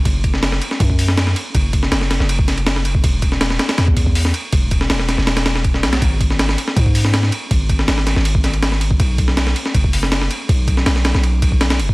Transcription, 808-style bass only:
X:1
M:4/4
L:1/16
Q:1/4=161
K:Elyd
V:1 name="808-style bass" clef=bass
F,,,6 z2 F,,6 z2 | F,,,4 F,,,3 F,,,8- F,,, | E,,,6 z2 E,,6 z2 | E,,,4 E,,,3 E,,,6- E,,, B,,,2 |
G,,,6 z2 G,,6 z2 | G,,,4 G,,,3 G,,,8- G,,, | B,,,6 z2 F,,,6 z2 | B,,,4 B,,,3 B,,,6- B,,, F,,,2 |]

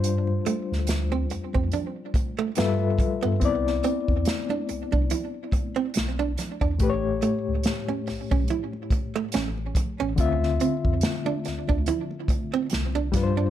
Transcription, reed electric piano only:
X:1
M:4/4
L:1/8
Q:"Swing 16ths" 1/4=71
K:Ddor
V:1 name="Reed electric piano"
[G,DFc]6 [G,FABe]2 | [B,CEd]8 | [A,,A,GB^c]8 | [D,CFe]6- [D,CFe] [G,DFBc] |]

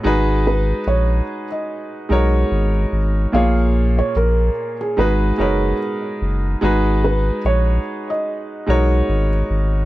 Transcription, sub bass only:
X:1
M:4/4
L:1/8
Q:"Swing 16ths" 1/4=73
K:G#dor
V:1 name="Sub bass" clef=bass
G,,,2 A,,, z2 B,,, G,,, G,,, | A,,,2 A,,, z G,,, F,,, z F,,, | G,,,2 A,,, z2 B,,, G,,, G,,, |]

